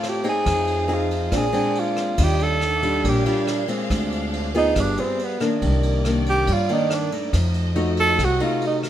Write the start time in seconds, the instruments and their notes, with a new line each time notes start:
Already playing: nylon-string guitar A2 A3 C4 F4, string section C4 F4 D5, tenor saxophone F4
0.03 cross-stick, ride
0.09 tenor saxophone G4
0.24 nylon-string guitar C4 D#4 G#4, ride
0.29 tenor saxophone G#4
0.45 upright bass F2, nylon-string guitar F3, string section D#4 G#4 F5, kick, cross-stick, ride
0.67 ride
0.88 nylon-string guitar C4 D#4 G#4, ride
0.94 tenor saxophone F4
1.11 ride
1.32 upright bass A#1, nylon-string guitar A#2 G#3 C4 D4, string section C4 G#4 D5, kick, cross-stick, ride
1.37 tenor saxophone G#4
1.53 nylon-string guitar G#3 C4 D4, ride
1.75 ride
1.80 tenor saxophone F4
1.96 cross-stick, ride
2.17 upright bass D#2, nylon-string guitar D#3 G3 D4 F4, string section D4 G4 F5, kick, ride
2.24 tenor saxophone G4
2.39 tenor saxophone A4, ride
2.61 cross-stick, ride
2.82 nylon-string guitar G3 D4 F4, ride
3.03 upright bass A#1, nylon-string guitar A#2, kick, ride
3.09 tenor saxophone G4
3.26 nylon-string guitar G3 D4 F4, ride
3.47 cross-stick, ride
3.68 nylon-string guitar G#3 C4 F4, ride
3.90 upright bass D2, nylon-string guitar D3, string section D4 C5, kick, cross-stick, ride
4.12 ride
4.33 ride
4.54 nylon-string guitar B3 F4 G#4, tenor saxophone D#4, ride
4.76 upright bass G1, nylon-string guitar G3, string section B3 G#4, kick, cross-stick, ride
4.81 tenor saxophone D4
4.97 nylon-string guitar B3 F4 G#4, tenor saxophone C4, ride
5.19 ride
5.24 tenor saxophone B3
5.40 nylon-string guitar D#3 A#3 D4, cross-stick, ride
5.61 upright bass C2, nylon-string guitar C3, string section A#3 D5, kick, ride
5.83 ride
6.05 nylon-string guitar D#3 A#3 D4, cross-stick, ride
6.26 tenor saxophone G4, ride
6.47 upright bass G2, nylon-string guitar G2, kick, ride
6.53 tenor saxophone F4
6.69 nylon-string guitar D#3 A#3 D4, tenor saxophone D#4, ride
6.90 cross-stick, ride
6.95 tenor saxophone D4
7.12 nylon-string guitar A3 D#4, ride
7.32 upright bass F2, nylon-string guitar F3, string section A3 F#4 D#5, kick, cross-stick, ride
7.54 ride
7.75 nylon-string guitar A3 D#4 F#4, ride
7.97 tenor saxophone A4, ride
8.19 upright bass C2, nylon-string guitar C3, kick, cross-stick, ride
8.24 tenor saxophone F#4
8.40 nylon-string guitar A3 D#4 F#4, tenor saxophone F4, ride
8.61 ride
8.67 tenor saxophone D#4
8.83 cross-stick, ride